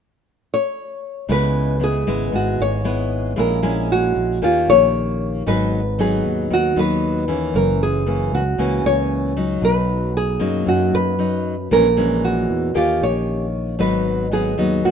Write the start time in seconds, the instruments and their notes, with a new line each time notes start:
0.54 nylon-string guitar C#5
1.29 fingered electric bass C#2, nylon-string guitar C#3 G#3 B3 E4 B4
1.80 nylon-string guitar G#3 B3 E4
1.84 nylon-string guitar G#4
2.07 fingered electric bass G#1, nylon-string guitar G#3 B3 E4
2.32 fingered electric bass G#1, nylon-string guitar G#2 F#4
2.60 fingered electric bass G#1, nylon-string guitar C#5
2.84 nylon-string guitar G#3 B3 E4
3.36 fingered electric bass A#1, nylon-string guitar A#2 G#3 C#4 E4 A#4
3.63 nylon-string guitar G#3 C#4 E4
3.92 nylon-string guitar F#4
4.16 fingered electric bass A#1
4.42 fingered electric bass D#2, nylon-string guitar D#3 A#3 C#4 F4 G4
4.68 fingered electric bass A#1, nylon-string guitar C#5
5.46 fingered electric bass G#1, nylon-string guitar G#2 F#3 B3 D#4 B4
5.99 nylon-string guitar F#3 B3 D#4 G#4
6.25 fingered electric bass D#2
6.50 fingered electric bass D#2, nylon-string guitar D#3 F#4
6.76 fingered electric bass D#2, nylon-string guitar F#3 B3 D#4 B4
7.28 nylon-string guitar E3 A#3 C#4
7.54 fingered electric bass F#1, nylon-string guitar F#2 A#4
7.83 nylon-string guitar G#4
8.06 nylon-string guitar E3 A#3 C#4
8.32 fingered electric bass C#2, nylon-string guitar F#4
8.58 fingered electric bass C#2, nylon-string guitar C#3 E3 A#3 C#4
8.84 fingered electric bass C#2, nylon-string guitar C#5
9.37 nylon-string guitar F#3 D#4
9.61 fingered electric bass B1, nylon-string guitar B2 B4
10.17 nylon-string guitar G#4
10.40 fingered electric bass F#2, nylon-string guitar F#3 A#3 D#4
10.66 nylon-string guitar F#2 F#4, fingered electric bass F#2
10.94 fingered electric bass F#2, nylon-string guitar B4
11.19 nylon-string guitar F#3 D#4
11.71 fingered electric bass A#1, nylon-string guitar A#2 E3 G#3 C#4 A#4
11.97 nylon-string guitar E3 G#3 C#4
12.25 nylon-string guitar F#4
12.50 fingered electric bass E2
12.74 fingered electric bass D#2, nylon-string guitar D#3 A#3 C#4 F4 G4
13.02 fingered electric bass A#1, nylon-string guitar C#5
13.79 fingered electric bass G#1, nylon-string guitar G#2 F#3 B3 D#4 B4
14.32 nylon-string guitar F#3 B3 D#4 G#4
14.58 fingered electric bass D#2, nylon-string guitar F#3 B3 D#4
14.85 fingered electric bass D#2, nylon-string guitar D#3 F#4